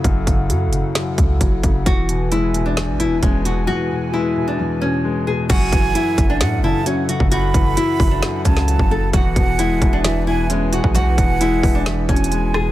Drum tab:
CC |------------------------------------------------|------------------------------------------------|------------------------------------------------|x-----------------------------------------------|
HH |x-----x-----x-----x-----x-----x-----x-----x-----|x-----x-----x-----x-----x-----x-----x-----x-----|------------------------------------------------|x-----x-----x-----x-----x-----------x-----x-----|
SD |------------------------o-----------------------|------------------------o-----------------------|------------------------------------------------|------------------------o-----------------------|
BD |o-----o-----------------------o-----o-----o-----|o-----------------------------------o-----------|------------------------------------------------|o-----o-----------o--------------------------o--|

CC |------------------------------------------------|------------------------------------------------|------------------------------------------------|
HH |x-----x-----x-----o-----x-----x-----x-----------|x-----x-----x-----x-----x-----------x-----x-----|x-----x-----x-----o-----x-----x-x-x-x-----------|
SD |------------------------o--------o--------------|------------------------o-----------------------|------------------------o-----------------r-----|
BD |------o-----------o-----------o--------o--------|o-----o-----------o--------------------------o--|------o-----------o-----------o-----------------|